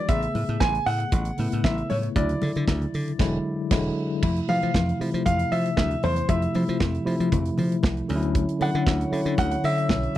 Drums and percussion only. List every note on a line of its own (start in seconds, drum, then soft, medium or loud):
0.09 kick loud
0.09 closed hi-hat medium
0.09 muted conga soft
0.23 closed hi-hat soft
0.35 open hi-hat medium
0.35 muted conga medium
0.49 closed hi-hat soft
0.61 kick loud
0.61 snare loud
0.61 high conga medium
0.75 closed hi-hat soft
0.87 open hi-hat medium
1.00 closed hi-hat soft
1.12 kick loud
1.12 closed hi-hat medium
1.12 muted conga medium
1.25 closed hi-hat soft
1.38 open hi-hat medium
1.38 muted conga soft
1.52 closed hi-hat medium
1.64 kick loud
1.64 snare loud
1.64 high conga medium
1.78 closed hi-hat soft
1.90 open hi-hat medium
1.90 high conga medium
2.03 closed hi-hat medium
2.16 kick loud
2.16 closed hi-hat medium
2.16 muted conga soft
2.29 closed hi-hat soft
2.42 open hi-hat medium
2.42 muted conga medium
2.56 closed hi-hat soft
2.68 kick loud
2.68 snare loud
2.68 high conga medium
2.82 closed hi-hat soft
2.94 open hi-hat medium
3.08 closed hi-hat soft
3.19 kick loud
3.19 snare medium
3.19 crash medium
3.71 kick loud
3.71 snare loud
3.71 crash medium
4.23 kick loud
4.23 crash medium
4.23 muted conga medium
4.36 closed hi-hat soft
4.49 open hi-hat medium
4.49 muted conga medium
4.63 closed hi-hat soft
4.74 kick medium
4.74 snare loud
4.74 high conga medium
4.89 closed hi-hat soft
5.01 open hi-hat medium
5.15 closed hi-hat soft
5.26 kick loud
5.26 closed hi-hat medium
5.26 muted conga medium
5.39 closed hi-hat soft
5.52 open hi-hat medium
5.66 closed hi-hat medium
5.77 kick loud
5.77 snare loud
5.77 high conga medium
5.91 closed hi-hat soft
6.03 open hi-hat medium
6.03 high conga medium
6.16 closed hi-hat medium
6.29 kick loud
6.29 closed hi-hat medium
6.29 muted conga medium
6.42 closed hi-hat soft
6.54 open hi-hat medium
6.54 muted conga medium
6.68 closed hi-hat soft
6.80 kick loud
6.80 snare loud
6.80 high conga medium
6.95 closed hi-hat soft
7.07 open hi-hat medium
7.21 closed hi-hat soft
7.32 kick loud
7.32 closed hi-hat medium
7.32 muted conga medium
7.32 low conga medium
7.46 closed hi-hat soft
7.58 open hi-hat medium
7.58 low conga medium
7.72 closed hi-hat medium
7.83 kick loud
7.83 snare loud
7.83 high conga medium
7.97 closed hi-hat soft
8.09 open hi-hat medium
8.09 high conga medium
8.23 closed hi-hat medium
8.35 kick loud
8.35 closed hi-hat medium
8.35 muted conga soft
8.49 closed hi-hat soft
8.61 open hi-hat medium
8.61 muted conga medium
8.75 closed hi-hat soft
8.87 kick loud
8.87 snare loud
8.87 high conga medium
9.01 closed hi-hat soft
9.13 open hi-hat medium
9.26 closed hi-hat medium
9.38 kick loud
9.38 closed hi-hat medium
9.38 muted conga medium
9.52 closed hi-hat medium
9.64 open hi-hat medium
9.64 muted conga soft
9.78 closed hi-hat medium
9.89 kick loud
9.89 snare loud
9.89 high conga medium
10.03 closed hi-hat soft